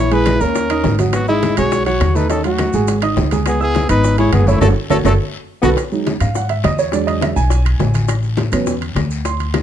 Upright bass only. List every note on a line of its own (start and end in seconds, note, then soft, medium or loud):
0.00 0.36 A#1 medium
0.41 0.82 D#2 medium
0.84 1.52 G#1 medium
1.58 1.98 B1 medium
2.01 2.68 D#2 medium
2.74 3.14 G#1 medium
3.17 3.84 C#2 medium
3.89 4.30 G#1 medium
4.33 4.60 F#1 medium
4.61 4.72 F#1 loud
4.90 5.01 F#1 medium
5.04 5.15 F#1 medium
5.63 5.74 B1 medium
6.21 6.61 G#2 medium
6.64 7.31 E2 medium
7.36 7.77 B1 medium
7.79 8.47 A1 medium
8.52 8.93 E2 medium
8.95 9.62 D2 medium